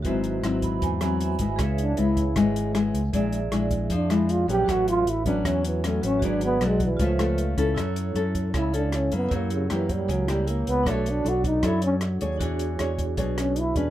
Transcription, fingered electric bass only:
X:1
M:4/4
L:1/8
Q:1/4=155
K:C#phr
V:1 name="Fingered electric bass" clef=bass
G,,,2 G,,,2 E,,3 G,,, | C,,2 C,,2 G,,,3 C,, | _B,,,2 B,,,2 =F,,3 B,,, | A,,,2 A,,,2 E,,3 A,,, |
G,,,2 B,,,2 C,,3 C,, | [K:F#m] F,,2 F,,2 C,,3 F,, | F,,2 F,,2 C,,3 C,, | B,,,2 B,,,2 F,,3 ^D,, |
E,,2 E,,2 B,,,3 E,, |]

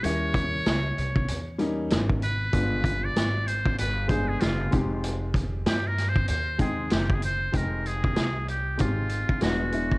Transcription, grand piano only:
X:1
M:4/4
L:1/16
Q:"Swing 16ths" 1/4=96
K:Fm
V:1 name="Grand piano"
[G,B,D_F]4- [G,B,DF] z4 z [G,B,DE]4 z2 | [A,=B,=DF]4- [A,B,DF] z4 z [A,B,DA]4 [A,CEG]2- | [A,CEG]4 z6 [A,CEg]4 z2 | [A,CEg]4- [A,CEg] z3 [A,CEG]4 [^G,=B,=D^F]2 [G,B,D=E]2 |]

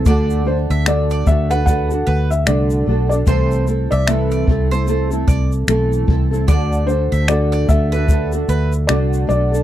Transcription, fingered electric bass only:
X:1
M:4/4
L:1/16
Q:"Swing 16ths" 1/4=75
K:Dmix
V:1 name="Fingered electric bass" clef=bass
D,,3 D,,3 D,,4 D,,2 C,,2 B,,,2 | C,,3 C,,3 C,,4 C,,2 B,,,2 C,,2 | D,,3 D,,3 D,,4 D,,2 C,,2 B,,,2 |]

